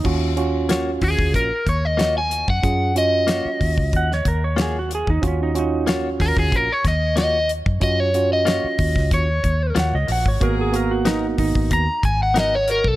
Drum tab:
CC |x---------------|----------------|----------------|----------------|
HH |--x-x-o-x-x-x-x-|x-x-x-o-x-x-x-x-|x-x-x-o-x-x-x-x-|x-x-x-o-x-x-x-o-|
SD |----o-------o---|----o----o--o---|----o-o---o-o---|----o--o----o---|
BD |o-----ooo-o----o|o-----ooo-o----o|o-----ooo-o----o|o-----ooo-o----o|

CC |----------------|
HH |x-x-x-o-x-x-x-x-|
SD |----o-------o---|
BD |o-----ooo-o----o|